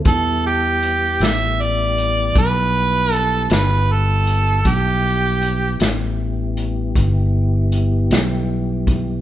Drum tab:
HH |x-xx-xx-xx-x|x-xx-xx-xx-x|
SD |---o-----o--|---o-----o--|
BD |o-----o-----|o-----o----o|